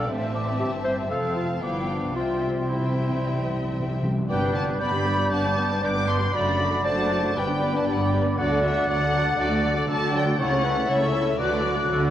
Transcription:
Already playing: F5
0.08 A1 A2 E3 C4 E5 A5
0.35 D5
0.59 G1 G2 G4 E5
0.84 C5
1.10 F1 F2 F3 C4 A4 F5 A5
1.36 F4
1.62 G1 G2 F3 B3 E4 D5 F5 G5
1.89 D4
2.15 C2 C3 G3 C4 F4 C5 E5 G5
2.24 C3
2.32 C3
2.39 C3
2.47 C3
2.55 C3
2.63 C3
2.69 C3 G3 C4 E4 E5 G5
2.79 C3
2.87 C3
2.94 C3
3.02 C3
3.10 C3
3.18 C3
3.26 C3
3.34 C3
3.49 C3
3.57 C3
3.64 C3
3.72 C3
3.80 C3
3.87 C3
3.95 C3
4.03 C3
4.11 C3
4.18 C3
4.28 G1 G2 G3 B3 D4 B4 D5 G5 G6
4.42 G3 B3 D4 B4
4.55 B3 D4 D5 A5
4.68 G3 B3 D4 B4
4.80 G1 G2 G3 B3 D4 D5 B5
4.94 G3 B3 D4 B4
5.07 B3 D4 D5
5.20 G3 B3 D4 B4
5.32 G1 G2 B3 D4 D5 A5
5.45 G3 B3 D4 B4
5.57 B3 D4 D5
5.70 G3 B3 D4 B4
5.82 G1 G2 G3 B3 D4 B4 D5 D6
5.95 G3 B3 D4 B4
6.08 B3 D4 D5 C6
6.20 G3 B3 D4 B4
6.33 F#1 F#2 F#3 A3 D4 F#4 D5 B5 A6
6.46 A3 D4 F#4 F#5
6.59 F#3 D4 F#4 D5
6.72 A3 D4 F#4 F#5
6.84 F#1 F#2 F#3 A3 D4 F#4 C5 D5 A5
6.98 A3 D4 F#4 F#5
7.10 F#3 D4 F#4 D5
7.23 A3 D4 F#4 F#5
7.35 G1 G2 G3 B3 D4 B4 D5 G5 B5
7.48 B3 G4 B4
7.61 G3 D4 B4 D5
7.73 B3 G4 B4 A5
7.86 G1 G2 G3 D4 B4 D5 G5
7.94 F#5
8.00 B3 G4 B4 G5
8.12 G3 D4 B4 D5
8.25 B3 G4 B4
8.38 D2 D3 F#3 A3 D4 F#4 D5 F#5 A6
8.51 A3 F#4 A4 F#5
8.63 F#3 D4 F#4 D5 E5
8.76 A3 F#4 A4 F#5
8.88 D2 D3 F#3 A3 D4 F#4 D5 F#5
9.01 A3 F#4 A4 F#5
9.13 F#3 D4 F#4 D5
9.25 A3 F#4 A4 F#5
9.38 D2 D3 F#3 A3 D4 F#4 D5
9.50 A3 F#4 A4 F#5
9.63 F#3 D4 F#4 D5
9.76 A3 F#4 A4 F#5
9.87 D2 D3 F#3 A3 D4 F#4 A4 D5 A5
10.01 A3 F#4 A4 F#5
10.13 F#3 D4 F#4 D5 G5
10.26 A3 F#4 A4 F#5
10.38 C#2 C#3 A3 C#4 E4 A4 C#5 F#5
10.51 A3 C#4 A4 C#5
10.64 C#4 E4 A4 B4 C#5
10.77 A3 C#4 A4 C#5
10.89 C#2 C#3 A3 C#4 E4 A4 C#5 E5
11.02 A3 C#4 A4 C#5
11.14 C#4 E4 A4 C#5
11.25 A3 C#4 A4 C#5
11.38 D2 D3 F#3 A3 F#4 B4 D5 F#6
11.51 A3 D4 A4 F#5
11.63 F#3 F#4 D5
11.76 A3 D4 A4 F#5
11.88 D2 D3 F#3 F#4 A4 D5
12.01 A3 D4 A4 F#5

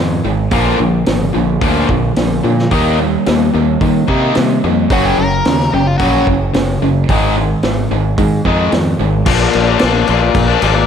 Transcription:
Already playing: F2 G#2
0.00 D#3
0.25 G#1 G#2 D#3
0.51 A#1 A#2 D3 F3 A#3, kick, open hi-hat
0.79 A#1 A#2 D3 F3
1.06 G#1 A#2 D3 F3, snare, open hi-hat
1.33 A#1 A#2 D3 F3
1.61 D2 A#2 D3 F3 A#3, kick, open hi-hat
1.89 A#1 A#2 D3 F3, kick
2.16 A#1 A#2 D3 F3, snare, open hi-hat
2.43 A#2 D3 F3
2.59 snare
2.71 D#2 D#3 G3 A#3 D#4, kick, open hi-hat
2.98 D#3 G3 A#3
3.26 D#2 D#3 G3 A#3, snare, open hi-hat
3.54 D#2 D#3 G3 A#3
3.81 D#3 G3 A#3, kick, open hi-hat
4.08 C3 D#3 G3 A#3 D#4, kick
4.35 C3 D#3 G3 A#3, snare, open hi-hat
4.64 F2 D#3 G3 A#3
4.90 F#1 F#2 C#3 F#3 F#4, kick, open hi-hat
5.05 G4
5.18 F#1 F#2 C#3 A#4
5.45 D#2 F#2 C#3, snare, open hi-hat
5.60 snare
5.73 F#1 F#2 C#3 G4
5.87 F4
5.98 A#1 F#2 C#3 F#3 F#4, kick, open hi-hat
6.27 F#1 F#2 C#3, kick
6.53 F#1 F#2 C#3, snare, open hi-hat
6.82 F#1 F#2 C#3
7.09 G#1 G#2 D#3 G#3, kick, open hi-hat
7.37 G#2 D#3
7.63 G#1 G#2 D#3, snare, open hi-hat
7.91 G#1 G#2 D#3
8.18 G#2 D#3, kick, open hi-hat
8.45 F2 G#2 D#3 G#3, kick
8.72 F2 G#2 D#3, snare, open hi-hat
9.00 G#1 G#2 D#3
9.26 A#1 A#2 F3 A#3 D4, kick, crash
9.53 A#1, crash
9.67 F3 A#3 D4
9.79 A#1 A#2 F3 A#3 D4, snare, crash
10.07 A#1 A#2 F3 A#3 D4, crash
10.22 muted overdriven electric guitar stroke
10.35 A#1, kick, crash
10.47 F3 A#3 D4
10.62 G#1 A#2 F3 A#3 D4, crash
10.75 muted overdriven electric guitar stroke

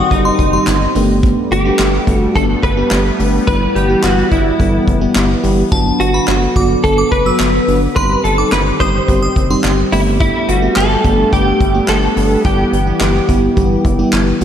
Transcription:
Already playing: D#3 G3 C4 F#4
0.11 G1 G3 C4 D#4 G4, kick, closed hi-hat
0.25 C6
0.39 F#1, kick, closed hi-hat
0.53 G3 C4 D#4 G4 C6
0.67 G1, snare, clap, closed hi-hat
0.95 G1 G3 A3 B3 D4 G4, open hi-hat
1.23 kick, closed hi-hat
1.51 G1 G4, closed hi-hat
1.65 A3 B3 D4 G4
1.79 G1, snare, clap, closed hi-hat
2.07 G1 A3 B3 D4 F#4 A4, kick, closed hi-hat
2.35 G1 A3 B3 D4 G4 A4, kick, closed hi-hat
2.63 G1 B4, kick, closed hi-hat
2.77 A3 B3 D4 G4
2.91 G1, snare, clap, closed hi-hat
3.19 G1 A3 B3 D4 G4, open hi-hat
3.47 G1 E3 G3 B3 E4 G4 B4, kick, closed hi-hat
3.75 G1 G4, closed hi-hat
3.89 G3 B3 E4 G4
4.04 G1 F#4, snare, clap, closed hi-hat
4.31 G1 G3 B3 E4 G4, kick, closed hi-hat
4.59 G1 G3 B3 E4 A4, kick, closed hi-hat
4.87 F#1, kick, closed hi-hat
5.01 G3 B3 E4 G4
5.16 G1, snare, clap, closed hi-hat
5.43 G1 G3 B3 E4 G4, open hi-hat
5.71 G1 D3 F#3 B3 D4 F#4 A5, kick, closed hi-hat
6.00 G1 F#4, closed hi-hat
6.14 F#3 B3 D4 F#4 B5
6.28 G1, snare, clap, closed hi-hat
6.56 G1 F#3 B3 D4 F#4 D6, kick, closed hi-hat
6.84 G1 F#3 B3 D4 A4, kick, closed hi-hat
6.98 D6
7.12 F#1 B4, kick, closed hi-hat
7.26 F#3 B3 D4 F#4 E6
7.40 G1, snare, clap, closed hi-hat
7.68 G1 F#3 B3 D4 F#4, open hi-hat
7.96 G1 D#3 G3 C4 D#4 G4 B4 C6, kick, closed hi-hat
8.24 G1 A4, closed hi-hat
8.38 G3 C4 D#4 G4 D6
8.52 G1 B4, snare, clap, closed hi-hat
8.80 G1 G3 C4 D#4 G4 C5 D#6, kick, closed hi-hat
9.08 G1 G3 C4 D#4 G4, kick, closed hi-hat
9.22 D#6
9.36 F#1, kick, closed hi-hat
9.50 G3 C4 D#4 G4 C6
9.64 G1, snare, clap, closed hi-hat
9.92 G1 A3 B3 D4 E4 G4, open hi-hat
10.20 E4, kick, closed hi-hat
10.49 G1 F#4, closed hi-hat
10.62 A3 B3 D4 G4
10.76 G1 A4, snare, clap, closed hi-hat
11.04 G1 A3 B3 D4 G4, kick, closed hi-hat
11.33 G1 A3 B3 D4 G4, kick, closed hi-hat
11.60 G1, kick, closed hi-hat
11.74 A3 B3 D4 G4
11.88 G1 A4, snare, clap, closed hi-hat
12.16 G1 A3 B3 D4 G4, open hi-hat
12.45 G1 E3 G3 B3 E4 G4, kick, closed hi-hat
12.73 G1, closed hi-hat
12.87 G3 B3 E4 G4
13.01 G1, snare, clap, closed hi-hat
13.29 G1 G3 B3 E4 G4, kick, closed hi-hat
13.57 G1 G3 B3 E4 G4, kick, closed hi-hat
13.85 F#1 E5, kick, closed hi-hat
13.99 G3 B3 E4 G4 G5
14.13 G1 A5, snare, clap, closed hi-hat
14.41 G1 G3 B3 E4 F#4 G5, open hi-hat

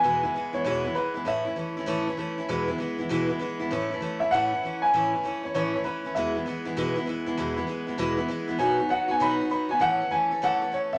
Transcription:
Already playing: G#5
0.03 E2 B2 E3 G#3 B3 E4
0.23 E3 G#3 B3 E4
0.34 E3 G#3 B3 E4
0.53 E3 G#3 B3 E4 C#5
0.64 E2 B2 E3 G#3 B3 E4 C#5
0.84 E3 G#3 B3 E4
0.95 E3 G#3 B3 E4 B4
1.14 E3 G#3 B3 E4
1.25 A2 E3 A3 C#4 E4 E5
1.45 A3 C#4 E4
1.56 E3 A3 C#4 E4
1.77 A3 C#4 E4
1.86 A2 E3 A3 C#4 E4
2.07 A3 C#4 E4
2.17 E3 A3 C#4 E4
2.38 A3 C#4 E4
2.48 E2 B2 E3 G#3 B3 E4
2.68 E3 G#3 B3 E4
2.78 E3 G#3 B3 E4
2.98 E3 G#3 B3 E4
3.09 E2 B2 E3 G#3 B3 E4
3.28 E3 G#3 B3 E4
3.39 E3 G#3 B3 E4
3.60 E3 G#3 B3 E4
3.71 A2 E3 A3 C#4 E4
3.90 A3 C#4 E4
4.00 E3 A3 C#4 E4
4.20 A3 C#4 E4 E5
4.31 A2 E3 A3 C#4 E4 F#5
4.52 A3 C#4 E4
4.63 E3 A3 C#4 E4
4.82 C#4 E4 G#5
4.87 A3
4.93 A2 E3 A3 C#4 E4
5.13 A3 C#4 E4
5.23 E3 A3 C#4 E4
5.43 A3 C#4 E4 C#5
5.54 A2 E3 A3 C#4 E4 C#5
5.73 A3 C#4 E4
5.84 E3 A3 C#4 E4 B4
6.04 A3 C#4 E4
6.15 E2 B2 E3 G#3 B3 E4 E5
6.35 E3 G#3 B3 E4
6.46 E3 G#3 B3 E4
6.65 E3 G#3 B3 E4
6.77 E2 B2 E3 G#3 B3 E4
6.96 E3 G#3 B3 E4
7.06 E3 G#3 B3 E4
7.26 E3 G#3 B3 E4
7.37 E2 B2 E3 G#3 B3 E4
7.56 E3 G#3 B3 E4
7.67 E3 G#3 B3 E4
7.87 E3 G#3 B3 E4
7.98 E2 B2 E3 G#3 B3 E4
8.17 E3 G#3 B3 E4
8.28 E3 G#3 B3 E4
8.48 E3 G#3 B3 E4
8.59 B2 F#3 B3 D#4 F#4 G#5
8.78 B3 D#4 F#4
8.89 F#3 B3 D#4 F#4 F#5
9.08 B3 D#4 F#4 G#5
9.20 B2 F#3 B3 D#4 F#4 B5
9.40 B3 D#4 F#4
9.50 F#3 B3 D#4 F#4 B5
9.69 B3 D#4 F#4 G#5
9.80 A2 E3 A3 C#4 A4 F#5
10.00 A3 C#4 A4
10.11 E3 A3 C#4 A4 G#5
10.31 A3 C#4 A4
10.42 A2 E3 A3 C#4 A4 F#5
10.62 A3 C#4 A4
10.72 E3 A3 C#4 A4 C#5
10.92 C#4 A4 E5

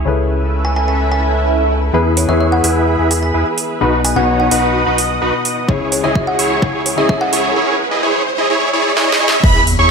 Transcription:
0.05 C#2 C#3 C#4 E4 A4 B4 E5
0.65 G#5
0.76 G#5
0.88 G#5
1.00 swell
1.12 G#5
1.93 E2 E3 B3 E4 G#4 B4 E5 B5, riser
2.17 C#5, open hi-hat
2.28 E2 E3 B3 E4 G#4 B4 C#5 E5
2.40 E5
2.52 F#5
2.64 E2 E4 G#4 B4, open hi-hat
2.99 E2 E4 G#4 B4
3.11 G#5, open hi-hat
3.23 G#5
3.34 E2 E4 G#4 B4
3.58 open hi-hat
3.80 B1 B2 B3 D#4 F#4 B4 D#5 F#5 D#6
4.04 G#5, open hi-hat
4.15 B1 B2 B3 D#4 F#4 B4 C#5 F#5
4.40 F#5
4.51 B1 D#4 F#4 B4 F#5, open hi-hat
4.86 B1 D#4 F#4 B4
4.98 open hi-hat
5.21 B1 D#4 F#4 B4
5.45 open hi-hat
5.68 C#2 C#3 C#4 E4 G#4 C#5 C#6, kick
5.92 C#5, open hi-hat
6.02 C#2 C#3 C#4 E4 G#4 C#5 D#5 E5
6.15 E5, kick
6.27 F#5
6.39 C#2 E4 G#4 C#5, open hi-hat
6.62 C#2 C#3 C#4 E4 G#4 C#5, kick
6.86 C#5, open hi-hat
6.96 C#2 C#3 C#4 E4 G#4 C#5 D#5 E5
7.09 E5, kick
7.21 F#5
7.33 C#2 E4 G#4 C#5, open hi-hat
7.56 E4 G#4 C#5
7.91 E4 G#4 D#5
8.03 E4 G#4 C#5
8.38 E4 G#4 D#5
8.50 E4 G#4 C#5
8.73 E4 G#4 C#5
8.97 E4 G#4 C#5, snare
9.12 snare
9.20 E4 G#4 C#5
9.28 snare
9.44 E2 E4 G#4 B4 E5 B5, kick, crash, impact
9.67 open hi-hat
9.79 E2 E4 G#4 C#5 C#6

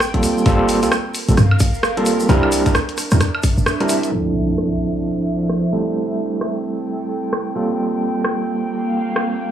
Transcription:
Already playing: A1 C4 A4 G5
0.00 cross-stick, shaker
0.14 G3 A#3 C4 F4 A4, kick, closed hi-hat
0.23 open hi-hat, shaker
0.38 shaker
0.46 G1 G3 A#3 C4 F4 A4, kick, closed hi-hat, shaker
0.69 open hi-hat, shaker
0.83 D2 G3 A#3 C4 F4 A4, closed hi-hat, shaker
0.92 A#4, cross-stick, shaker
1.14 F5, open hi-hat, shaker
1.29 A#1 G3 A#3 C4 F4 A4, closed hi-hat, shaker
1.37 G2, cross-stick, closed hi-hat, shaker
1.51 high woodblock
1.60 G1, kick, open hi-hat, shaker
1.74 shaker
1.83 cross-stick, shaker
1.97 G3 A#3 C4 F4 A4, closed hi-hat
2.06 open hi-hat, shaker
2.20 shaker
2.29 C2 G3 C4 D4 E4 A#4, closed hi-hat, shaker
2.43 high woodblock
2.52 open hi-hat, shaker
2.66 G1 G3 C4 D4 E4 A#4, kick, closed hi-hat, shaker
2.75 cross-stick, shaker
2.89 closed hi-hat
2.98 cross-stick, open hi-hat, shaker
3.11 E2 G3 C4 D4 E4 A#4 E5, cross-stick, closed hi-hat, shaker
3.20 cross-stick, closed hi-hat, shaker
3.35 high woodblock
3.43 kick, open hi-hat, shaker
3.58 G1, shaker
3.66 cross-stick, shaker
3.80 G3 C4 D4 E4 A#4, closed hi-hat
3.89 open hi-hat, shaker
4.03 closed hi-hat, shaker
4.12 F3 C4 D4 E4 A4, crash, impact
4.44 C5
4.58 F3, cross-stick
5.49 cross-stick
5.73 G3 A3 C4 E4 A4
6.36 G5
6.41 A4, cross-stick
7.33 cross-stick
7.56 G3 A#3 C4 F4 A4
8.10 A#3
8.24 cross-stick
8.49 F5
9.16 cross-stick

